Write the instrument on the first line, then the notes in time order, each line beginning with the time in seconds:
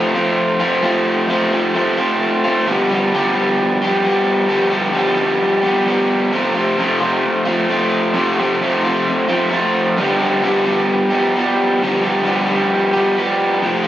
overdriven electric guitar
Already playing: F3 A3 C4 F4
0.14 A3 C4 F4
0.60 A3 C4 F4
0.82 F3 A3 C4 F4
1.27 F3 A3 C4 F4
1.52 A3 C4 F4
1.74 F3 A3 C4 F4
1.97 A3 C4 F4
2.44 A3 C4 F4
2.65 G2 D3 F3 G3 B3 G4
2.89 F3 G3 B3 G4
3.12 G2 D3 F3 G3 B3 G4
3.35 F3 G3 B3 G4
3.82 F3 G3 B3 G4
4.03 F3 G3 B3 G4
4.48 G2 D3 F3 G3 B3 G4
4.70 F3 G3 B3 G4
4.93 G2 D3 F3 G3 B3 G4
5.15 F3 G3 B3 G4
5.62 F3 G3 B3 G4
5.86 F3 G3 B3 G4
6.32 F2 C3 F3 A3 C4 F4
6.54 F3 A3 C4 F4
6.77 F2 C3 F3 A3 C4 F4
7.00 F3 A3 C4 F4
7.45 F3 A3 C4 F4
7.68 F3 A3 C4 F4
8.14 F2 C3 F3 A3 C4 F4
8.38 F3 A3 C4 F4
8.60 F2 C3 F3 A3 C4 F4
8.84 F3 A3 C4 F4
9.29 F3 A3 C4 F4
9.50 F3 A3 C4 F4
9.97 G2 D3 F3 G3 B3 G4
10.20 F3 G3 B3 G4
10.42 G2 D3 F3 G3 B3 G4
10.65 F3 G3 B3 G4
11.11 F3 G3 B3 G4
11.35 F3 G3 B3 G4
11.81 G2 D3 F3 G3 B3 G4
12.03 F3 G3 B3 G4
12.24 G2 D3 F3 G3 B3 G4
12.47 F3 G3 B3 G4
12.93 F3 G3 B3 G4
13.17 F3 G3 B3 G4
13.62 F2 C3 F3 A3 C4 F4
13.83 F4